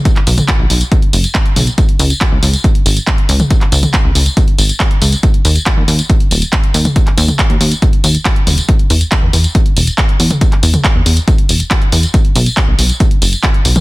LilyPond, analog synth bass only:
\new Staff \with { instrumentName = "Analog synth bass" } { \clef bass \time 4/4 \key cis \dorian \tempo 4 = 139 r8 b,,16 r8 b,,16 b,,16 r8. fis,,16 r8. b,,16 r16 | r8 cis,16 r8 cis,16 cis,16 r8. gis,,16 r8. cis,16 r16 | r8 cis,16 r8 cis,16 cis,16 r8. gis,,16 r8. cis,16 r16 | r8 dis,16 r8 dis,16 dis,16 r8. dis,,16 r8. dis,16 r16 |
r8 dis,16 r8 dis,16 dis,16 r8. dis,16 r8. dis,,16 r16 | r8 e,16 r8 e,16 e,16 r8. e,,16 r8. e,16 r16 | r8 e,16 r8 e,16 e,16 r8. e,,16 r8. e,16 r16 | r8 b,,16 r8 b,,16 b,,16 r8. fis,,16 r8. b,,16 r16 | }